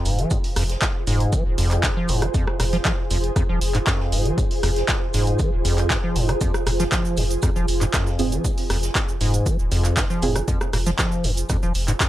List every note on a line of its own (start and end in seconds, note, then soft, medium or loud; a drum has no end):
0.00 12.09 F4 medium
0.00 12.09 G#4 medium
0.00 12.09 C5 medium
0.00 12.09 G#5 medium
0.05 0.25 F1 loud
0.05 0.20 G#2 medium
0.05 open hi-hat loud
0.05 shaker medium
0.19 0.33 F3 medium
0.19 closed hi-hat medium
0.30 0.38 F2 loud
0.30 kick loud
0.30 closed hi-hat medium
0.30 shaker medium
0.44 open hi-hat medium
0.56 0.76 F1 medium
0.56 0.64 F2 medium
0.56 cross-stick medium
0.56 open hi-hat loud
0.56 shaker medium
0.69 snare medium
0.69 closed hi-hat medium
0.81 kick loud
0.81 snare loud
0.81 clap loud
0.81 closed hi-hat medium
0.81 shaker medium
1.07 1.27 F1 loud
1.07 1.34 G#2 loud
1.07 snare soft
1.07 open hi-hat loud
1.07 shaker medium
1.20 closed hi-hat medium
1.33 1.44 F3 medium
1.33 kick loud
1.33 closed hi-hat medium
1.33 shaker loud
1.46 1.55 D#1 loud
1.58 1.78 F1 medium
1.58 1.85 F2 loud
1.58 open hi-hat loud
1.58 shaker medium
1.71 clap soft
1.71 closed hi-hat medium
1.71 closed hi-hat soft
1.83 1.91 G#2 medium
1.83 kick loud
1.83 snare loud
1.83 clap loud
1.83 closed hi-hat medium
1.83 shaker loud
1.97 2.11 F3 medium
2.08 2.29 F1 medium
2.08 2.24 G#2 medium
2.08 open hi-hat loud
2.08 shaker medium
2.22 2.26 F3 medium
2.22 cross-stick medium
2.22 closed hi-hat medium
2.34 2.45 F2 medium
2.34 kick loud
2.34 closed hi-hat soft
2.34 shaker medium
2.47 cross-stick medium
2.60 2.79 F1 loud
2.60 2.64 A#2 medium
2.60 cross-stick medium
2.60 open hi-hat loud
2.60 shaker medium
2.72 2.77 F3 loud
2.72 snare soft
2.72 closed hi-hat medium
2.84 2.92 F3 medium
2.84 kick loud
2.84 snare loud
2.84 clap loud
2.84 closed hi-hat soft
2.84 shaker medium
3.10 3.30 F1 loud
3.10 3.18 F2 medium
3.10 open hi-hat loud
3.10 shaker medium
3.24 closed hi-hat medium
3.36 3.43 F2 loud
3.36 kick loud
3.36 cross-stick medium
3.36 closed hi-hat soft
3.36 shaker medium
3.49 3.59 D#1 medium
3.49 3.59 F3 medium
3.61 3.81 F1 medium
3.61 open hi-hat loud
3.61 shaker medium
3.75 3.79 G#2 loud
3.75 clap soft
3.75 closed hi-hat medium
3.87 4.02 F#2 medium
3.87 kick loud
3.87 snare loud
3.87 clap loud
3.87 closed hi-hat medium
3.87 shaker medium
4.00 4.14 F2 medium
4.00 snare soft
4.12 4.32 F1 loud
4.12 4.27 G#2 loud
4.12 open hi-hat loud
4.12 shaker medium
4.25 4.39 F3 medium
4.25 closed hi-hat medium
4.38 4.45 F2 loud
4.38 kick loud
4.38 closed hi-hat soft
4.38 shaker medium
4.51 open hi-hat medium
4.63 4.83 F1 loud
4.63 4.70 F2 medium
4.63 cross-stick medium
4.63 open hi-hat loud
4.63 shaker medium
4.76 snare soft
4.76 closed hi-hat medium
4.88 kick loud
4.88 snare loud
4.88 clap loud
4.88 closed hi-hat soft
4.88 shaker medium
5.14 5.34 F1 loud
5.14 5.41 G#2 loud
5.14 snare soft
5.14 open hi-hat loud
5.14 shaker medium
5.27 closed hi-hat medium
5.39 5.50 F3 medium
5.39 kick loud
5.39 closed hi-hat soft
5.39 shaker medium
5.53 5.62 D#1 loud
5.65 5.85 F1 medium
5.65 5.92 F2 loud
5.65 open hi-hat loud
5.65 shaker medium
5.78 clap soft
5.78 closed hi-hat medium
5.78 closed hi-hat soft
5.90 5.98 G#2 medium
5.90 kick loud
5.90 snare loud
5.90 clap loud
5.90 closed hi-hat medium
5.90 shaker medium
6.04 6.17 F3 medium
6.16 6.35 F1 loud
6.16 6.30 G#2 loud
6.16 open hi-hat loud
6.16 shaker medium
6.29 6.33 F3 medium
6.29 cross-stick medium
6.29 closed hi-hat medium
6.41 6.52 F2 medium
6.41 kick loud
6.41 closed hi-hat soft
6.41 shaker medium
6.54 cross-stick medium
6.54 shaker soft
6.66 6.86 F1 loud
6.66 6.71 A#2 medium
6.66 cross-stick medium
6.66 open hi-hat loud
6.66 shaker medium
6.80 6.84 F3 loud
6.80 snare soft
6.80 closed hi-hat medium
6.80 shaker medium
6.92 7.19 F3 medium
6.92 kick loud
6.92 snare loud
6.92 clap loud
6.92 closed hi-hat soft
6.92 shaker medium
7.05 shaker soft
7.17 7.37 F1 loud
7.17 7.25 F2 loud
7.17 open hi-hat loud
7.17 shaker medium
7.31 closed hi-hat medium
7.31 shaker medium
7.42 7.50 F2 loud
7.42 kick loud
7.42 cross-stick medium
7.42 closed hi-hat medium
7.42 shaker loud
7.42 shaker medium
7.56 7.65 D#1 medium
7.56 7.66 F3 medium
7.56 shaker soft
7.68 7.88 F1 medium
7.68 open hi-hat loud
7.68 shaker medium
7.81 7.85 G#2 loud
7.81 clap soft
7.81 closed hi-hat medium
7.81 shaker medium
7.94 8.08 F#2 medium
7.94 kick loud
7.94 snare loud
7.94 clap loud
7.94 closed hi-hat medium
7.94 shaker medium
8.07 8.21 F2 medium
8.07 snare soft
8.07 shaker soft
8.19 8.39 F1 loud
8.19 8.34 G#2 loud
8.19 8.27 C4 medium
8.19 8.27 F4 medium
8.19 8.27 G#4 medium
8.19 open hi-hat loud
8.19 shaker medium
8.32 8.46 F3 medium
8.32 closed hi-hat medium
8.32 shaker medium
8.45 8.52 F2 loud
8.45 kick loud
8.45 closed hi-hat soft
8.45 shaker medium
8.58 open hi-hat medium
8.58 shaker soft
8.70 8.90 F1 medium
8.70 8.77 F2 medium
8.70 cross-stick medium
8.70 open hi-hat loud
8.70 shaker medium
8.83 snare soft
8.83 closed hi-hat medium
8.83 shaker medium
8.95 kick loud
8.95 snare loud
8.95 clap loud
8.95 closed hi-hat medium
8.95 shaker medium
9.08 shaker soft
9.21 9.40 F1 loud
9.21 9.48 G#2 loud
9.21 snare soft
9.21 open hi-hat loud
9.21 shaker medium
9.34 closed hi-hat medium
9.34 shaker medium
9.46 9.57 F3 medium
9.46 kick loud
9.46 closed hi-hat soft
9.46 shaker medium
9.59 9.69 D#1 loud
9.59 shaker soft
9.72 9.91 F1 medium
9.72 9.99 F2 loud
9.72 open hi-hat loud
9.72 shaker medium
9.85 clap soft
9.85 closed hi-hat medium
9.85 closed hi-hat soft
9.85 shaker medium
9.97 10.04 G#2 medium
9.97 kick loud
9.97 snare loud
9.97 clap loud
9.97 closed hi-hat medium
9.97 shaker medium
9.97 shaker loud
10.10 10.24 F3 medium
10.10 shaker soft
10.22 10.42 F1 loud
10.22 10.37 G#2 loud
10.22 10.30 C4 medium
10.22 10.30 F4 medium
10.22 10.30 G#4 loud
10.22 open hi-hat loud
10.22 shaker medium
10.36 10.40 F3 medium
10.36 cross-stick medium
10.36 closed hi-hat medium
10.36 shaker medium
10.48 10.59 F2 medium
10.48 kick loud
10.48 closed hi-hat medium
10.48 shaker medium
10.61 cross-stick medium
10.61 shaker soft
10.73 10.93 F1 loud
10.73 10.78 A#2 medium
10.73 cross-stick medium
10.73 open hi-hat loud
10.73 shaker medium
10.86 10.91 F3 loud
10.86 snare soft
10.86 closed hi-hat medium
10.86 shaker medium
10.99 11.26 F3 medium
10.99 kick loud
10.99 snare loud
10.99 clap loud
10.99 closed hi-hat medium
10.99 shaker medium
11.12 shaker soft
11.24 11.44 F1 medium
11.24 11.31 F2 loud
11.24 open hi-hat loud
11.24 shaker medium
11.37 closed hi-hat medium
11.37 shaker medium
11.49 11.57 F2 loud
11.49 kick loud
11.49 cross-stick medium
11.49 closed hi-hat medium
11.49 shaker medium
11.63 11.72 D#1 loud
11.63 11.73 F3 medium
11.63 shaker soft
11.75 11.95 F1 medium
11.75 open hi-hat loud
11.75 shaker medium
11.88 11.92 G#2 loud
11.88 clap soft
11.88 closed hi-hat medium
11.88 shaker medium
12.00 12.09 F#2 medium
12.00 kick loud
12.00 snare loud
12.00 clap loud
12.00 closed hi-hat medium
12.00 shaker medium